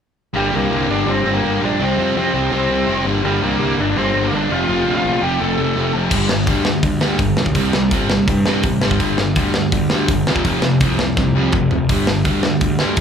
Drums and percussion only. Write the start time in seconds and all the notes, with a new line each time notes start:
6.11 kick, crash
6.29 snare
6.47 kick, open hi-hat
6.65 snare
6.83 kick, open hi-hat
7.01 snare
7.19 kick, open hi-hat
7.37 snare
7.46 kick
7.55 kick, open hi-hat
7.73 snare
7.91 kick, open hi-hat
8.10 snare
8.28 kick, open hi-hat
8.46 snare
8.63 kick, open hi-hat
8.82 snare
8.91 kick
9.00 kick, open hi-hat
9.18 snare
9.36 kick, open hi-hat
9.54 snare
9.72 kick, open hi-hat
9.90 snare
10.08 kick, open hi-hat
10.27 snare
10.36 kick
10.45 kick, open hi-hat
10.62 snare
10.81 kick, open hi-hat
10.99 snare
11.17 kick, snare
11.53 kick, mid tom
11.71 floor tom
11.89 kick, open hi-hat
12.07 snare
12.25 kick, open hi-hat
12.43 snare
12.61 kick, open hi-hat
12.79 snare
12.97 kick, open hi-hat